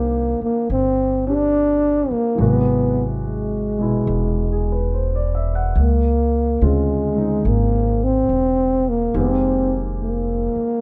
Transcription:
0.00 0.37 C2 medium
0.00 2.39 D#3 soft
0.00 0.43 A#3 medium
0.00 2.39 A#3 soft
0.00 1.25 C4 soft
0.00 1.26 D4 soft
0.00 1.28 G4 soft
0.00 2.41 G#5 soft
0.41 0.69 A#3 medium
0.41 muted upright bass stroke soft
0.70 2.07 G1 medium
0.70 1.23 C4 medium
1.26 2.39 C4 soft
1.26 2.13 D4 medium
1.26 2.40 D4 soft
1.26 2.41 G4 soft
2.11 2.40 A#3 medium
2.11 muted upright bass stroke soft
2.35 4.04 G#1 medium
2.35 5.75 E3 soft
2.35 5.77 F#3 soft
2.35 3.77 G#3 soft
2.40 5.78 C3 soft
2.40 3.02 B3 medium
2.40 5.78 F#4 soft
3.26 4.90 G#3 soft
3.79 5.77 B2 soft
3.79 5.76 G#3 soft
3.79 5.78 E4 soft
4.07 5.73 E1 medium
4.52 4.78 G#4 soft
4.72 5.01 B4 soft
4.94 5.33 C5 soft
5.16 5.51 D5 soft
5.35 5.61 E5 soft
5.55 5.85 F#5 soft
5.75 6.57 C#2 medium
5.80 6.67 A#3 medium
6.61 7.42 D2 medium
6.61 9.15 C#3 soft
6.61 7.14 G#3 soft
6.61 7.49 G#3 medium
6.61 7.15 C4 soft
6.61 9.15 F4 soft
7.15 9.14 G#3 soft
7.15 9.14 C4 soft
7.15 9.15 D#4 soft
7.45 8.26 G#1 medium
7.45 8.06 A#3 medium
8.04 8.90 C4 medium
8.29 9.10 E1 soft
8.89 9.16 A#3 medium
9.14 10.52 F1 medium
9.14 10.81 D#3 soft
9.14 10.81 G#3 soft
9.14 10.81 A#3 soft
9.14 10.81 C4 soft
9.14 10.81 G4 soft
9.19 9.79 C4 medium
10.04 10.81 A#3 medium
10.56 muted upright bass stroke soft

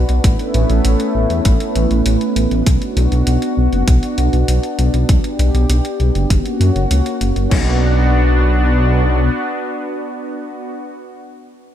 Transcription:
0.00 0.20 D4 medium
0.00 0.22 F#4 medium
0.00 2.62 B4 medium
0.09 0.20 B1 medium
0.09 closed hi-hat soft
0.24 0.35 A1 medium
0.24 2.64 A3 medium
0.24 6.26 B3 medium
0.24 2.64 C#4 medium
0.24 2.64 E4 medium
0.24 kick loud
0.24 closed hi-hat medium
0.39 closed hi-hat soft
0.54 0.65 A1 medium
0.54 closed hi-hat medium
0.70 0.80 A1 medium
0.70 closed hi-hat soft
0.85 0.95 A1 medium
0.85 closed hi-hat medium
1.00 closed hi-hat soft
1.15 1.26 A1 medium
1.30 1.41 E2 medium
1.30 closed hi-hat soft
1.45 1.56 A1 medium
1.45 kick loud
1.45 closed hi-hat medium
1.60 closed hi-hat soft
1.76 1.86 A1 loud
1.76 closed hi-hat medium
1.91 2.01 A1 medium
1.91 closed hi-hat soft
2.06 2.17 A1 medium
2.06 closed hi-hat medium
2.21 closed hi-hat soft
2.36 2.47 A1 loud
2.36 closed hi-hat medium
2.51 2.62 A1 medium
2.51 closed hi-hat soft
2.66 2.77 B1 medium
2.66 6.26 D4 medium
2.66 5.07 F#4 medium
2.66 kick loud
2.66 closed hi-hat medium
2.82 closed hi-hat soft
2.97 3.07 B1 medium
2.97 closed hi-hat medium
3.12 3.23 B1 medium
3.12 closed hi-hat soft
3.27 3.38 B1 loud
3.27 closed hi-hat medium
3.42 closed hi-hat soft
3.57 3.68 B1 medium
3.72 3.83 F#1 medium
3.72 closed hi-hat soft
3.88 3.98 B1 medium
3.88 kick loud
3.88 closed hi-hat medium
4.03 closed hi-hat soft
4.18 4.29 B1 medium
4.18 closed hi-hat medium
4.33 4.44 B1 medium
4.33 closed hi-hat soft
4.48 4.59 B1 loud
4.48 closed hi-hat medium
4.63 closed hi-hat soft
4.79 4.89 B1 medium
4.79 closed hi-hat medium
4.94 5.04 B1 medium
4.94 closed hi-hat soft
5.09 5.20 B1 medium
5.09 6.29 G4 medium
5.09 kick loud
5.09 closed hi-hat medium
5.24 closed hi-hat soft
5.39 5.50 B1 medium
5.39 closed hi-hat medium
5.54 5.65 B1 medium
5.54 closed hi-hat soft
5.69 5.80 B1 loud
5.69 closed hi-hat medium
5.85 closed hi-hat soft
6.00 6.11 B1 medium
6.00 closed hi-hat soft
6.15 6.26 F#1 medium
6.15 closed hi-hat soft
6.30 6.41 F#1 medium
6.30 7.50 A#3 medium
6.30 7.50 C#4 medium
6.30 7.50 F#4 medium
6.30 kick loud
6.30 closed hi-hat medium
6.46 closed hi-hat soft
6.60 6.71 F#2 medium
6.60 closed hi-hat medium
6.75 6.86 F#1 medium
6.75 closed hi-hat soft
6.91 7.01 C#2 loud
6.91 closed hi-hat medium
7.06 closed hi-hat soft
7.21 7.32 F#1 medium
7.21 closed hi-hat medium
7.36 7.47 F#1 medium
7.36 closed hi-hat soft
7.51 9.29 B1 medium
7.51 10.70 B3 medium
7.51 10.70 D4 medium
7.51 10.70 F#4 medium
7.51 kick loud
7.51 crash medium

